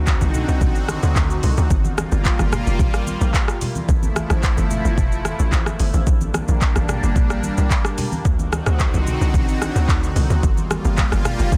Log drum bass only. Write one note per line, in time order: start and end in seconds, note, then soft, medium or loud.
0.00 0.17 D2 loud
0.21 0.44 C2 medium
0.48 0.60 C2 loud
0.61 0.97 A1 loud
1.03 1.14 D2 loud
1.16 1.39 D2 loud
1.43 1.55 C2 medium
1.58 1.69 D2 loud
1.70 2.06 G1 loud
2.12 2.35 G1 loud
2.39 2.63 G1 loud
2.67 2.78 F1 medium
2.79 3.15 A1 medium
3.21 3.32 A#1 loud
3.89 4.24 A1 loud
4.30 4.54 A1 loud
4.58 4.81 G1 loud
4.85 4.96 G1 medium
4.98 5.33 F1 loud
5.39 5.51 A1 loud
5.52 5.64 A1 loud
5.80 5.92 G1 medium
5.94 6.05 A1 loud
6.07 6.42 A#1 loud
6.48 6.72 A#1 loud
6.76 6.99 A1 medium
7.03 7.14 G1 medium
7.16 7.51 A#1 loud
7.58 7.69 C2 medium
8.25 8.60 D2 loud
8.67 8.90 D2 loud
8.94 9.17 C2 medium
9.21 9.32 C2 loud
9.34 9.69 A1 loud
9.76 9.87 D2 loud
9.89 10.12 D2 loud
10.16 10.28 C2 loud
10.30 10.41 D2 medium
10.43 10.79 G1 loud
10.85 11.08 G1 loud
11.12 11.35 G1 medium
11.39 11.51 F1 medium
11.52 11.57 A1 loud